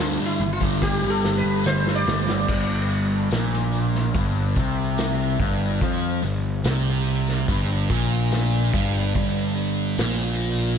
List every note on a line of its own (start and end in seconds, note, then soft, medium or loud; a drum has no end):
0.00 0.16 D2 medium
0.00 0.39 G2 medium
0.00 0.19 D3 medium
0.00 0.18 G3 loud
0.00 snare loud
0.19 0.39 D3 medium
0.19 0.40 G3 medium
0.26 0.52 E4 medium
0.40 0.99 G1 loud
0.40 muted distorted electric guitar stroke soft
0.40 tambourine medium
0.53 0.60 F4 medium
0.60 1.03 D3 medium
0.60 1.01 G3 medium
0.60 kick medium
0.81 1.09 G4 medium
0.81 kick loud
0.81 snare medium
0.81 tambourine medium
1.02 1.41 G1 loud
1.02 1.23 D3 medium
1.02 1.24 G3 medium
1.10 1.36 A4 medium
1.22 1.63 G2 medium
1.22 1.64 D3 loud
1.22 1.65 G3 medium
1.22 snare medium
1.22 tambourine medium
1.38 1.66 B4 medium
1.44 2.02 G1 medium
1.64 2.05 G2 loud
1.64 1.85 D3 loud
1.64 1.83 G3 loud
1.64 1.94 C5 loud
1.64 snare medium
1.64 tambourine loud
1.84 2.06 D3 medium
1.84 2.07 G3 medium
1.84 snare medium
1.95 2.33 D5 loud
2.06 2.44 G1 medium
2.06 2.45 G2 medium
2.06 2.28 D3 medium
2.06 2.26 G3 loud
2.06 snare loud
2.06 tambourine soft
2.27 2.46 D3 medium
2.27 2.46 G3 medium
2.27 snare medium
2.47 3.28 G1 medium
2.47 3.30 G2 medium
2.47 kick loud
2.47 crash loud
2.47 tambourine soft
2.89 open hi-hat medium
2.89 tambourine medium
3.31 4.11 A#1 medium
3.31 4.13 A#2 loud
3.31 snare loud
3.31 open hi-hat medium
3.31 tambourine medium
3.53 snare soft
3.72 open hi-hat medium
3.72 tambourine medium
3.95 snare soft
4.14 4.53 G1 loud
4.14 4.55 G2 loud
4.14 kick loud
4.14 open hi-hat medium
4.14 tambourine medium
4.56 5.36 C2 loud
4.56 5.39 C3 loud
4.56 kick loud
4.56 open hi-hat medium
4.56 tambourine medium
4.98 snare loud
4.98 open hi-hat medium
4.98 tambourine loud
5.39 5.78 G1 medium
5.39 5.80 G2 loud
5.39 kick loud
5.39 open hi-hat medium
5.39 tambourine soft
5.81 6.20 F2 medium
5.81 6.22 F3 loud
5.81 kick loud
5.81 open hi-hat medium
5.81 tambourine soft
6.22 6.62 G1 medium
6.22 6.57 G2 medium
6.22 open hi-hat medium
6.22 tambourine medium
6.64 7.44 C2 medium
6.64 7.47 C3 medium
6.64 snare loud
6.64 open hi-hat medium
6.64 tambourine medium
7.07 open hi-hat medium
7.07 tambourine medium
7.28 snare soft
7.48 7.87 G1 medium
7.48 7.88 G2 loud
7.48 kick loud
7.48 open hi-hat medium
7.48 tambourine medium
7.90 8.69 A#1 medium
7.90 8.72 A#2 loud
7.90 kick loud
7.90 open hi-hat medium
7.90 tambourine medium
8.32 snare loud
8.32 open hi-hat medium
8.32 tambourine medium
8.73 9.12 G1 medium
8.73 9.14 G2 loud
8.73 kick loud
8.73 open hi-hat medium
8.73 tambourine soft
9.15 9.94 G1 medium
9.15 9.97 G2 loud
9.15 kick loud
9.15 open hi-hat medium
9.15 tambourine soft
9.57 open hi-hat medium
9.57 tambourine medium
9.98 10.77 A#1 medium
9.98 10.78 A#2 loud
9.98 snare loud
9.98 open hi-hat medium
9.98 tambourine medium
10.40 open hi-hat medium
10.40 tambourine medium